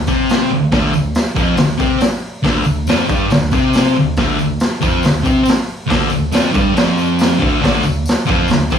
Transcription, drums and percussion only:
0.07 kick, tambourine
0.29 snare, open hi-hat, tambourine
0.72 kick, snare, open hi-hat
0.94 tambourine
1.15 snare, open hi-hat, tambourine
1.36 kick, tambourine
1.57 snare, open hi-hat, tambourine
1.79 kick, tambourine
2.00 snare, open hi-hat, tambourine
2.44 kick, snare, open hi-hat, tambourine
2.64 tambourine
2.87 snare, open hi-hat, tambourine
3.09 kick, tambourine
3.30 snare, open hi-hat, tambourine
3.51 kick, tambourine
3.73 snare, open hi-hat, tambourine
3.95 tambourine
4.16 kick, snare, open hi-hat
4.39 tambourine
4.60 snare, open hi-hat, tambourine
4.82 kick, tambourine
5.03 snare, open hi-hat, tambourine
5.25 kick, tambourine
5.46 snare, open hi-hat, tambourine
5.90 kick, snare, open hi-hat
6.10 tambourine
6.32 snare, open hi-hat, tambourine
6.54 kick, tambourine
6.76 snare, open hi-hat, tambourine
6.97 tambourine
7.19 snare, open hi-hat, tambourine
7.42 kick
7.64 kick, snare, open hi-hat
7.83 tambourine
8.06 snare, open hi-hat, tambourine
8.26 kick, tambourine
8.48 snare, open hi-hat, tambourine
8.70 kick, tambourine

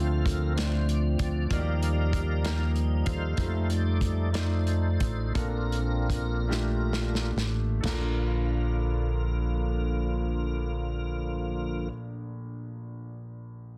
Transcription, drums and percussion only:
0.26 kick, closed hi-hat
0.58 snare, closed hi-hat
0.89 closed hi-hat
1.19 kick, closed hi-hat
1.51 kick, closed hi-hat
1.83 closed hi-hat
2.13 kick, closed hi-hat
2.45 snare, closed hi-hat
2.76 closed hi-hat
3.06 kick, closed hi-hat
3.37 kick, closed hi-hat
3.70 closed hi-hat
4.01 kick, closed hi-hat
4.34 snare, closed hi-hat
4.67 closed hi-hat
5.00 kick, closed hi-hat
5.35 kick, closed hi-hat
5.72 closed hi-hat
6.10 kick, closed hi-hat
6.51 snare
6.93 snare
7.15 snare
7.38 snare
7.84 snare, floor tom, crash

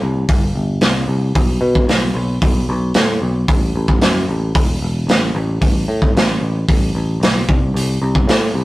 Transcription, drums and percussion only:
0.29 kick, open hi-hat
0.81 snare, open hi-hat
1.35 kick, open hi-hat
1.75 kick
1.89 snare, open hi-hat
2.42 kick, open hi-hat
2.94 snare, open hi-hat
3.48 kick, open hi-hat
3.88 kick
4.01 snare, open hi-hat
4.55 kick, open hi-hat
5.09 snare, open hi-hat
5.62 kick, open hi-hat
6.02 kick
6.17 snare, open hi-hat
6.69 kick, open hi-hat
7.23 snare, open hi-hat
7.49 kick
7.76 open hi-hat
8.15 kick
8.29 snare, open hi-hat

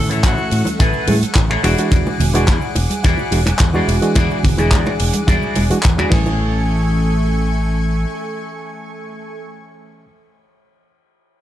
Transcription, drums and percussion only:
0.10 closed hi-hat, cabasa
0.24 kick, clap, closed hi-hat, ride, cabasa
0.38 high bongo, cabasa
0.51 open hi-hat, ride
0.65 closed hi-hat, high bongo, high conga, cabasa
0.80 kick, closed hi-hat, ride, cabasa
0.93 cabasa
1.07 open hi-hat, ride, high bongo, high conga
1.22 closed hi-hat, cabasa
1.35 kick, clap, closed hi-hat, ride, high bongo, cabasa
1.50 finger snap, cabasa
1.64 finger snap, open hi-hat, ride
1.78 closed hi-hat, high bongo, cabasa
1.91 kick, closed hi-hat, ride, cabasa
2.07 high bongo, cabasa
2.20 open hi-hat, ride, low conga
2.34 closed hi-hat, cabasa
2.47 kick, clap, closed hi-hat, ride, high bongo, cabasa
2.61 cabasa
2.75 open hi-hat, ride, high bongo
2.90 closed hi-hat, high conga, cabasa
3.04 kick, closed hi-hat, ride, cabasa
3.18 high bongo, cabasa
3.32 open hi-hat, ride
3.46 finger snap, closed hi-hat, high bongo, high conga, cabasa
3.59 kick, clap, closed hi-hat, ride, cabasa
3.74 cabasa
3.88 open hi-hat, ride, high bongo
4.02 closed hi-hat, cabasa
4.15 kick, closed hi-hat, ride, high bongo, cabasa
4.31 cabasa
4.43 kick, open hi-hat, ride, low conga
4.58 closed hi-hat, high bongo, cabasa
4.71 kick, clap, closed hi-hat, ride, cabasa
4.86 finger snap, high bongo, cabasa
5.00 open hi-hat, ride
5.13 closed hi-hat, high conga, cabasa
5.28 kick, closed hi-hat, ride, high bongo, high conga, cabasa
5.42 cabasa
5.55 open hi-hat, ride, high bongo, high conga
5.70 closed hi-hat, cabasa
5.83 kick, clap, closed hi-hat, ride, cabasa
5.98 finger snap, high bongo, cabasa
6.12 kick, crash, high conga
6.26 high bongo, cabasa

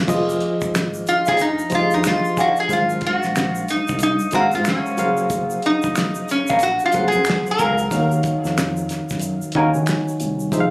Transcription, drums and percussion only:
0.08 kick, crash, shaker
0.29 shaker
0.40 closed hi-hat
0.61 kick, shaker
0.75 finger snap, snare, closed hi-hat, shaker
0.77 finger snap
0.94 shaker
1.07 closed hi-hat, shaker
1.26 kick, snare, shaker
1.37 closed hi-hat, shaker
1.59 shaker
1.70 kick, closed hi-hat, shaker
1.91 shaker
2.04 finger snap, snare, closed hi-hat, shaker
2.08 finger snap
2.25 shaker
2.37 kick, closed hi-hat, shaker
2.56 shaker
2.69 kick, closed hi-hat, shaker
2.90 shaker
3.01 kick, closed hi-hat
3.23 snare, shaker
3.36 finger snap, snare, closed hi-hat, shaker
3.38 finger snap
3.55 shaker
3.68 closed hi-hat, shaker
3.88 kick, shaker
3.99 closed hi-hat, shaker
4.19 shaker
4.31 kick, closed hi-hat, shaker
4.52 shaker
4.65 finger snap, snare, closed hi-hat, shaker
4.69 finger snap
4.86 shaker
4.98 closed hi-hat, shaker
5.17 shaker
5.30 kick, closed hi-hat, shaker
5.50 shaker
5.62 closed hi-hat
5.82 kick, shaker
5.96 finger snap, snare, closed hi-hat, shaker
5.99 finger snap
6.15 shaker
6.29 closed hi-hat, shaker
6.47 kick, shaker
6.59 closed hi-hat, shaker
6.79 shaker
6.92 kick, closed hi-hat, shaker
7.12 shaker
7.25 finger snap, closed hi-hat, shaker
7.30 finger snap, snare
7.46 shaker
7.59 kick, closed hi-hat, shaker
7.78 shaker
7.91 kick, closed hi-hat, shaker
8.12 shaker
8.23 kick, closed hi-hat, shaker
8.45 snare, shaker
8.58 finger snap, snare, closed hi-hat, shaker
8.59 finger snap
8.77 shaker
8.89 snare, closed hi-hat, shaker
9.09 kick, snare, shaker
9.19 closed hi-hat, shaker
9.42 shaker
9.52 kick, closed hi-hat
9.74 shaker
9.86 finger snap, snare, closed hi-hat, shaker
9.90 finger snap
10.08 shaker
10.20 closed hi-hat, shaker
10.40 shaker
10.52 kick, closed hi-hat, shaker

